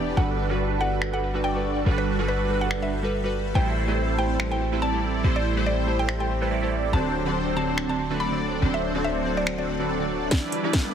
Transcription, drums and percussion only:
1.02 finger snap medium
2.71 finger snap medium
4.40 finger snap medium
6.09 finger snap medium
7.78 finger snap medium
9.47 finger snap medium
10.31 kick loud
10.31 snare soft
10.31 closed hi-hat medium
10.52 closed hi-hat medium
10.73 kick medium
10.73 snare soft
10.73 closed hi-hat medium

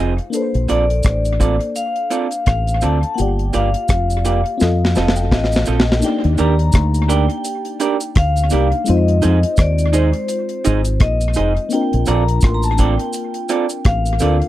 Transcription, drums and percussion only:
0.18 closed hi-hat soft
0.33 closed hi-hat medium
0.33 cabasa medium
0.54 closed hi-hat soft
0.68 closed hi-hat medium
0.68 cabasa soft
0.90 closed hi-hat medium
1.03 kick loud
1.03 cross-stick loud
1.03 closed hi-hat medium
1.03 cabasa medium
1.25 closed hi-hat medium
1.25 cabasa soft
1.41 kick medium
1.41 closed hi-hat medium
1.41 cabasa medium
1.61 closed hi-hat medium
1.76 closed hi-hat medium
1.76 cabasa medium
1.96 closed hi-hat soft
2.11 closed hi-hat medium
2.11 cabasa medium
2.31 closed hi-hat soft
2.31 cabasa medium
2.46 kick loud
2.46 cross-stick loud
2.46 closed hi-hat medium
2.67 closed hi-hat medium
2.67 cabasa soft
2.81 closed hi-hat medium
2.81 cabasa medium
3.03 closed hi-hat soft
3.18 closed hi-hat medium
3.18 cabasa medium
3.39 closed hi-hat soft
3.53 closed hi-hat medium
3.53 cabasa soft
3.74 closed hi-hat medium
3.88 kick medium
3.88 cross-stick loud
3.88 closed hi-hat medium
3.88 cabasa medium
4.10 closed hi-hat soft
4.10 cabasa soft
4.25 closed hi-hat medium
4.25 cabasa medium
4.46 closed hi-hat medium
4.60 snare soft
4.60 cabasa medium
4.85 snare medium
4.95 snare medium
4.95 cabasa medium
5.08 snare medium
5.16 cabasa medium
5.31 kick loud
5.31 snare medium
5.44 snare medium
5.52 cabasa medium
5.56 snare medium
5.66 cabasa medium
5.80 snare medium
5.92 snare medium
6.02 closed hi-hat medium
6.02 cabasa medium
6.24 closed hi-hat soft
6.38 closed hi-hat medium
6.38 cabasa medium
6.59 closed hi-hat medium
6.72 kick loud
6.72 cross-stick loud
6.72 closed hi-hat medium
6.72 cabasa medium
6.94 closed hi-hat medium
6.94 cabasa medium
7.10 closed hi-hat medium
7.10 cabasa medium
7.30 closed hi-hat medium
7.44 closed hi-hat medium
7.44 cabasa medium
7.65 closed hi-hat medium
7.80 closed hi-hat medium
7.80 cabasa medium
8.00 closed hi-hat medium
8.00 cabasa medium
8.15 kick loud
8.15 cross-stick loud
8.15 closed hi-hat loud
8.36 closed hi-hat medium
8.36 cabasa medium
8.50 closed hi-hat medium
8.50 cabasa medium
8.72 closed hi-hat soft
8.86 closed hi-hat medium
8.86 cabasa medium
9.08 closed hi-hat medium
9.22 closed hi-hat medium
9.22 cabasa medium
9.43 closed hi-hat medium
9.57 kick loud
9.57 cross-stick loud
9.57 closed hi-hat medium
9.57 cabasa medium
9.78 closed hi-hat medium
9.78 cabasa soft
9.93 closed hi-hat medium
9.93 cabasa medium
10.13 closed hi-hat medium
10.28 closed hi-hat medium
10.28 cabasa medium
10.49 closed hi-hat medium
10.64 closed hi-hat medium
10.64 cabasa medium
10.85 closed hi-hat medium
10.85 cabasa medium
11.00 kick loud
11.00 cross-stick loud
11.00 closed hi-hat loud
11.21 closed hi-hat medium
11.21 cabasa medium
11.34 closed hi-hat medium
11.34 cabasa medium
11.57 closed hi-hat soft
11.70 closed hi-hat medium
11.70 cabasa medium
11.93 closed hi-hat medium
12.06 closed hi-hat medium
12.06 cabasa medium
12.28 closed hi-hat medium
12.41 kick loud
12.41 cross-stick loud
12.41 closed hi-hat medium
12.41 cabasa medium
12.63 closed hi-hat medium
12.63 cabasa medium
12.78 kick medium
12.78 closed hi-hat medium
12.78 cabasa medium
12.99 closed hi-hat medium
13.13 closed hi-hat medium
13.13 cabasa medium
13.34 closed hi-hat medium
13.49 closed hi-hat medium
13.49 cabasa medium
13.69 closed hi-hat medium
13.69 cabasa medium
13.85 kick loud
13.85 cross-stick loud
13.85 closed hi-hat loud
14.06 closed hi-hat medium
14.06 cabasa medium
14.19 closed hi-hat medium
14.19 cabasa medium
14.42 closed hi-hat soft

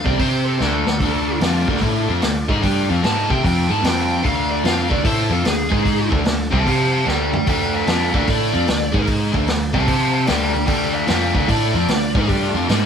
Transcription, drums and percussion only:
0.06 kick loud
0.19 kick medium
0.19 open hi-hat soft
0.61 snare medium
0.87 snare medium
1.00 kick medium
1.00 open hi-hat soft
1.41 snare loud
1.41 open hi-hat medium
1.68 kick loud
1.76 snare soft
1.82 kick medium
1.82 open hi-hat medium
2.22 snare loud
2.22 open hi-hat medium
2.49 kick loud
2.63 kick medium
2.63 open hi-hat soft
3.04 snare loud
3.04 open hi-hat soft
3.30 kick loud
3.45 kick loud
3.45 open hi-hat medium
3.84 snare loud
3.84 open hi-hat medium
4.25 kick medium
4.25 open hi-hat medium
4.65 snare loud
4.65 open hi-hat medium
4.91 kick loud
5.05 kick loud
5.05 open hi-hat medium
5.45 snare loud
5.45 open hi-hat medium
5.72 kick loud
5.86 kick medium
5.86 open hi-hat medium
6.12 kick loud
6.25 snare loud
6.25 open hi-hat medium
6.53 kick loud
6.67 kick loud
6.67 open hi-hat medium
7.08 snare medium
7.33 floor tom medium
7.47 kick loud
7.47 open hi-hat medium
7.87 snare loud
7.87 open hi-hat medium
8.14 kick loud
8.27 kick loud
8.27 open hi-hat medium
8.68 snare loud
8.68 open hi-hat medium
8.94 kick loud
9.07 kick medium
9.07 open hi-hat soft
9.34 kick loud
9.47 snare loud
9.47 open hi-hat medium
9.74 kick loud
9.88 kick loud
9.88 open hi-hat medium
10.27 snare loud
10.27 open hi-hat medium
10.67 kick medium
10.67 open hi-hat soft
11.08 snare loud
11.08 open hi-hat medium
11.35 kick loud
11.49 kick medium
11.49 open hi-hat medium
11.88 snare loud
11.88 open hi-hat medium
12.15 kick loud
12.29 kick medium
12.29 open hi-hat medium
12.69 snare loud
12.69 open hi-hat medium

